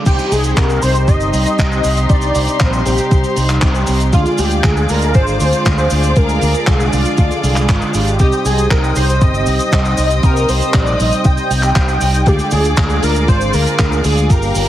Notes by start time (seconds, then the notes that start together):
0.06 C2 C3 G3 C4 D#4 G4 C5 C6, kick, closed hi-hat, crash, cabasa
0.19 closed hi-hat, cabasa
0.31 C2 G#4, open hi-hat, cabasa
0.44 closed hi-hat, cabasa
0.57 C2 A#4, kick, clap, cabasa
0.70 closed hi-hat, cabasa
0.82 C2 C3 G3 C4 D#4 G4 C5, open hi-hat, cabasa
0.95 closed hi-hat, cabasa
1.07 G1 D#5, kick, closed hi-hat, cabasa
1.20 closed hi-hat, cabasa
1.33 C2, open hi-hat, cabasa
1.46 closed hi-hat, cabasa
1.59 C2, kick, clap, closed hi-hat, cabasa
1.72 closed hi-hat, cabasa
1.84 C2, open hi-hat, cabasa
1.97 closed hi-hat, cabasa
2.09 C2 C3 G3 C4 D#4 G4 D5, kick, closed hi-hat, cabasa
2.22 closed hi-hat, cabasa
2.35 C2, open hi-hat, cabasa
2.48 closed hi-hat, cabasa
2.60 A#1 C5, kick, clap, closed hi-hat, cabasa
2.73 closed hi-hat, cabasa
2.85 A#1 C3 G3 C4 D#4 G4 C5, open hi-hat, cabasa
2.98 closed hi-hat, cabasa
3.11 C2, kick, closed hi-hat, cabasa
3.24 closed hi-hat, cabasa
3.36 C2, open hi-hat, cabasa
3.49 C3 G3 C4 D#4 G4, clap, closed hi-hat, cabasa
3.62 C2, kick, clap, cabasa
3.74 closed hi-hat, cabasa
3.87 C2, open hi-hat, cabasa
4.00 closed hi-hat, cabasa
4.13 D2 D3 G#3 D4 F4 G#4 D5 F5 D6, kick, closed hi-hat, cabasa
4.26 closed hi-hat, cabasa
4.38 D2 G4, open hi-hat, cabasa
4.51 closed hi-hat, cabasa
4.64 D2 G#4, kick, clap, closed hi-hat, cabasa
4.77 closed hi-hat, cabasa
4.89 D2 D3 G#3 D4 F4 G#4 A#4, open hi-hat, cabasa
5.02 closed hi-hat, cabasa
5.14 G#1 C5, kick, closed hi-hat, cabasa
5.27 closed hi-hat, cabasa
5.40 D2, open hi-hat, cabasa
5.53 closed hi-hat, cabasa
5.65 D2, kick, clap, closed hi-hat, cabasa
5.78 closed hi-hat, cabasa
5.90 D2, open hi-hat, cabasa
6.03 closed hi-hat, cabasa
6.16 D2 D3 G#3 D4 F4 G#4 A#4, kick, closed hi-hat, cabasa
6.29 closed hi-hat, cabasa
6.41 D2, open hi-hat, cabasa
6.54 closed hi-hat, cabasa
6.67 C2 G#4, kick, clap, cabasa
6.80 closed hi-hat, cabasa
6.93 C2 D3 G#3 D4 F4 D5, open hi-hat, cabasa
7.05 closed hi-hat, cabasa
7.18 D2, kick, closed hi-hat, cabasa
7.31 closed hi-hat, cabasa
7.43 C2 D3 G#3 D4 F4 G#4, open hi-hat, cabasa
7.56 clap, closed hi-hat, cabasa
7.68 G#1, kick, clap, closed hi-hat, cabasa
7.82 closed hi-hat, cabasa
7.94 G#1 G#3 D4 F4 G4, open hi-hat, cabasa
8.08 closed hi-hat, cabasa
8.19 C2 C3 G3 C4 D#4 G4 C5 D#5 G5 D#6, kick, closed hi-hat, cabasa
8.32 closed hi-hat, cabasa
8.45 C2 G#4, open hi-hat, cabasa
8.58 closed hi-hat, cabasa
8.70 C2 A#4, kick, clap, closed hi-hat, cabasa
8.84 closed hi-hat, cabasa
8.96 C2 C3 G3 C4 D#4 G4 C5, open hi-hat, cabasa
9.09 closed hi-hat, cabasa
9.21 G1 D#5, kick, closed hi-hat, cabasa
9.34 closed hi-hat, cabasa
9.46 C2, open hi-hat, cabasa
9.59 closed hi-hat, cabasa
9.72 C2, kick, clap, cabasa
9.85 closed hi-hat, cabasa
9.98 C2, open hi-hat, cabasa
10.10 closed hi-hat, cabasa
10.23 C2 C3 G3 C4 D#4 G4 A#4, kick, closed hi-hat, cabasa
10.36 closed hi-hat, cabasa
10.49 C2 C5, open hi-hat, cabasa
10.62 closed hi-hat, cabasa
10.74 A#1 D5, kick, clap, closed hi-hat, cabasa
10.86 closed hi-hat, cabasa
10.99 A#1 C3 G3 C4 D#4 C5 D#5, open hi-hat, cabasa
11.12 closed hi-hat, cabasa
11.24 C2 G5, kick, closed hi-hat, cabasa
11.37 closed hi-hat, cabasa
11.50 C2, open hi-hat, cabasa
11.63 C3 G3 C4 D#4 G4, clap, closed hi-hat, cabasa
11.76 C2, kick, clap, cabasa
11.88 closed hi-hat, cabasa
12.01 C2, open hi-hat, cabasa
12.14 closed hi-hat, cabasa
12.26 D2 D3 G#3 D4 F4 G4 G#4 D5 F5 D6, kick, closed hi-hat, cabasa
12.39 closed hi-hat, cabasa
12.51 D2 G#4, open hi-hat, cabasa
12.65 closed hi-hat, cabasa
12.77 D2, kick, clap, cabasa
12.90 closed hi-hat, cabasa
13.03 D2 D3 G#3 D4 F4 G#4 A#4, open hi-hat, cabasa
13.15 closed hi-hat, cabasa
13.28 G#1 C5, kick, closed hi-hat, cabasa
13.41 closed hi-hat, cabasa
13.53 D2 A#4, open hi-hat, cabasa
13.67 closed hi-hat, cabasa
13.79 D2, kick, clap, closed hi-hat, cabasa
13.92 closed hi-hat, cabasa
14.04 D2 G#4, open hi-hat, cabasa
14.18 closed hi-hat, cabasa
14.30 G1 G2 A#3 D4 F4 G4 A#4 G5 D6, kick, closed hi-hat, cabasa
14.42 open hi-hat, cabasa
14.55 G1, open hi-hat, cabasa